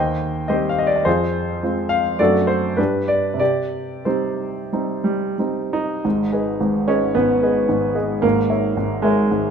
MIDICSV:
0, 0, Header, 1, 2, 480
1, 0, Start_track
1, 0, Key_signature, -3, "minor"
1, 0, Tempo, 568182
1, 894, Time_signature, 4, 2, 24, 8
1, 2343, Tempo, 623053
1, 2823, Tempo, 662983
1, 4743, Tempo, 544465
1, 4744, Key_signature, 5, "minor"
1, 7789, End_track
2, 0, Start_track
2, 0, Title_t, "Grand piano"
2, 0, Program_c, 0, 0
2, 0, Note_on_c, 0, 39, 48
2, 0, Note_on_c, 0, 72, 50
2, 0, Note_on_c, 0, 75, 51
2, 0, Note_on_c, 0, 79, 61
2, 103, Control_c, 0, 64, 127
2, 382, Note_off_c, 0, 75, 0
2, 383, Note_off_c, 0, 72, 0
2, 400, Note_off_c, 0, 39, 0
2, 406, Note_on_c, 0, 75, 61
2, 411, Note_off_c, 0, 79, 0
2, 417, Note_on_c, 0, 55, 33
2, 419, Note_on_c, 0, 60, 32
2, 419, Note_on_c, 0, 72, 48
2, 420, Note_on_c, 0, 67, 46
2, 578, Note_off_c, 0, 67, 0
2, 578, Note_off_c, 0, 72, 0
2, 584, Note_off_c, 0, 75, 0
2, 586, Note_on_c, 0, 77, 58
2, 663, Note_off_c, 0, 77, 0
2, 663, Note_on_c, 0, 75, 59
2, 732, Note_on_c, 0, 74, 60
2, 740, Note_off_c, 0, 75, 0
2, 811, Note_on_c, 0, 75, 51
2, 813, Note_off_c, 0, 74, 0
2, 861, Note_off_c, 0, 55, 0
2, 862, Note_off_c, 0, 60, 0
2, 887, Note_on_c, 0, 72, 70
2, 891, Note_off_c, 0, 75, 0
2, 894, Note_on_c, 0, 41, 44
2, 899, Note_on_c, 0, 65, 53
2, 899, Note_on_c, 0, 68, 50
2, 912, Control_c, 0, 64, 0
2, 1030, Control_c, 0, 64, 127
2, 1364, Note_off_c, 0, 41, 0
2, 1368, Note_off_c, 0, 65, 0
2, 1377, Note_on_c, 0, 56, 31
2, 1377, Note_on_c, 0, 60, 30
2, 1381, Note_on_c, 0, 65, 35
2, 1583, Note_off_c, 0, 68, 0
2, 1598, Note_on_c, 0, 77, 67
2, 1611, Note_off_c, 0, 72, 0
2, 1818, Note_off_c, 0, 56, 0
2, 1818, Note_off_c, 0, 60, 0
2, 1820, Note_off_c, 0, 65, 0
2, 1845, Note_off_c, 0, 77, 0
2, 1851, Note_on_c, 0, 74, 66
2, 1854, Note_on_c, 0, 57, 32
2, 1859, Note_on_c, 0, 42, 45
2, 1859, Note_on_c, 0, 60, 32
2, 1860, Note_on_c, 0, 69, 52
2, 1861, Note_on_c, 0, 66, 50
2, 1865, Note_on_c, 0, 62, 31
2, 1869, Control_c, 0, 64, 0
2, 1981, Control_c, 0, 64, 127
2, 2082, Note_off_c, 0, 69, 0
2, 2083, Note_off_c, 0, 66, 0
2, 2089, Note_on_c, 0, 72, 60
2, 2094, Note_off_c, 0, 74, 0
2, 2311, Note_off_c, 0, 57, 0
2, 2314, Note_off_c, 0, 60, 0
2, 2317, Note_off_c, 0, 62, 0
2, 2333, Note_off_c, 0, 42, 0
2, 2338, Note_on_c, 0, 71, 52
2, 2341, Note_off_c, 0, 72, 0
2, 2347, Note_on_c, 0, 43, 38
2, 2348, Note_on_c, 0, 55, 26
2, 2350, Note_on_c, 0, 67, 38
2, 2351, Note_on_c, 0, 62, 41
2, 2361, Control_c, 0, 64, 0
2, 2513, Control_c, 0, 64, 127
2, 2566, Note_off_c, 0, 62, 0
2, 2566, Note_off_c, 0, 67, 0
2, 2577, Note_off_c, 0, 71, 0
2, 2579, Note_on_c, 0, 74, 59
2, 2778, Note_on_c, 0, 48, 39
2, 2795, Note_off_c, 0, 55, 0
2, 2810, Note_off_c, 0, 74, 0
2, 2811, Note_off_c, 0, 43, 0
2, 2822, Note_on_c, 0, 74, 66
2, 2831, Note_on_c, 0, 67, 48
2, 2837, Control_c, 0, 64, 0
2, 2973, Control_c, 0, 64, 127
2, 3267, Note_off_c, 0, 48, 0
2, 3278, Note_off_c, 0, 67, 0
2, 3298, Note_on_c, 0, 72, 43
2, 3302, Note_off_c, 0, 74, 0
2, 3304, Note_on_c, 0, 55, 27
2, 3305, Note_on_c, 0, 60, 30
2, 3305, Note_on_c, 0, 67, 33
2, 3309, Note_on_c, 0, 63, 33
2, 3753, Note_off_c, 0, 55, 0
2, 3753, Note_off_c, 0, 60, 0
2, 3778, Note_off_c, 0, 63, 0
2, 3785, Note_on_c, 0, 55, 31
2, 3787, Note_on_c, 0, 60, 29
2, 3789, Note_on_c, 0, 63, 34
2, 4002, Note_off_c, 0, 55, 0
2, 4013, Note_on_c, 0, 55, 54
2, 4240, Note_off_c, 0, 67, 0
2, 4241, Note_off_c, 0, 60, 0
2, 4242, Note_off_c, 0, 63, 0
2, 4251, Note_off_c, 0, 55, 0
2, 4262, Note_on_c, 0, 55, 28
2, 4265, Note_off_c, 0, 72, 0
2, 4268, Note_on_c, 0, 60, 27
2, 4270, Note_on_c, 0, 63, 29
2, 4502, Note_off_c, 0, 63, 0
2, 4513, Note_on_c, 0, 63, 67
2, 4712, Note_off_c, 0, 55, 0
2, 4715, Note_off_c, 0, 60, 0
2, 4741, Note_on_c, 0, 44, 42
2, 4742, Note_on_c, 0, 32, 39
2, 4758, Control_c, 0, 64, 0
2, 4886, Control_c, 0, 64, 127
2, 4982, Note_off_c, 0, 44, 0
2, 4983, Note_off_c, 0, 32, 0
2, 4986, Note_on_c, 0, 68, 34
2, 4988, Note_on_c, 0, 71, 33
2, 4993, Note_on_c, 0, 75, 36
2, 5210, Note_off_c, 0, 68, 0
2, 5211, Note_off_c, 0, 71, 0
2, 5214, Note_off_c, 0, 75, 0
2, 5232, Note_on_c, 0, 44, 35
2, 5233, Note_on_c, 0, 32, 37
2, 5471, Note_off_c, 0, 44, 0
2, 5472, Note_off_c, 0, 32, 0
2, 5473, Note_on_c, 0, 61, 66
2, 5477, Note_on_c, 0, 68, 33
2, 5478, Note_off_c, 0, 63, 0
2, 5480, Note_on_c, 0, 71, 33
2, 5485, Note_on_c, 0, 75, 36
2, 5697, Note_off_c, 0, 68, 0
2, 5698, Note_off_c, 0, 71, 0
2, 5701, Note_off_c, 0, 75, 0
2, 5711, Note_on_c, 0, 59, 70
2, 5719, Note_off_c, 0, 61, 0
2, 5721, Note_on_c, 0, 44, 37
2, 5724, Note_on_c, 0, 32, 41
2, 5952, Note_off_c, 0, 44, 0
2, 5953, Note_off_c, 0, 32, 0
2, 5957, Note_on_c, 0, 68, 32
2, 5960, Note_on_c, 0, 71, 33
2, 5964, Note_on_c, 0, 75, 35
2, 6169, Note_off_c, 0, 68, 0
2, 6171, Note_off_c, 0, 71, 0
2, 6173, Note_off_c, 0, 75, 0
2, 6187, Note_on_c, 0, 32, 35
2, 6188, Note_on_c, 0, 44, 36
2, 6419, Note_on_c, 0, 68, 33
2, 6420, Note_off_c, 0, 32, 0
2, 6420, Note_off_c, 0, 44, 0
2, 6422, Note_on_c, 0, 71, 33
2, 6425, Note_on_c, 0, 75, 34
2, 6640, Note_off_c, 0, 68, 0
2, 6642, Note_off_c, 0, 71, 0
2, 6643, Note_off_c, 0, 75, 0
2, 6657, Note_on_c, 0, 58, 73
2, 6661, Note_on_c, 0, 32, 42
2, 6663, Note_on_c, 0, 44, 43
2, 6664, Note_off_c, 0, 59, 0
2, 6687, Control_c, 0, 64, 0
2, 6805, Control_c, 0, 64, 127
2, 6899, Note_off_c, 0, 32, 0
2, 6900, Note_off_c, 0, 44, 0
2, 6900, Note_on_c, 0, 70, 33
2, 6903, Note_on_c, 0, 73, 35
2, 6905, Note_on_c, 0, 76, 40
2, 7122, Note_off_c, 0, 70, 0
2, 7123, Note_off_c, 0, 73, 0
2, 7124, Note_off_c, 0, 76, 0
2, 7138, Note_on_c, 0, 32, 38
2, 7143, Note_on_c, 0, 44, 37
2, 7364, Note_on_c, 0, 56, 69
2, 7374, Note_on_c, 0, 70, 33
2, 7378, Note_off_c, 0, 32, 0
2, 7379, Note_on_c, 0, 73, 33
2, 7380, Note_off_c, 0, 44, 0
2, 7381, Note_on_c, 0, 76, 39
2, 7385, Note_off_c, 0, 58, 0
2, 7596, Note_off_c, 0, 70, 0
2, 7598, Note_off_c, 0, 73, 0
2, 7600, Note_off_c, 0, 76, 0
2, 7619, Note_on_c, 0, 32, 40
2, 7619, Note_on_c, 0, 44, 39
2, 7789, Note_off_c, 0, 32, 0
2, 7789, Note_off_c, 0, 44, 0
2, 7789, Note_off_c, 0, 56, 0
2, 7789, End_track
0, 0, End_of_file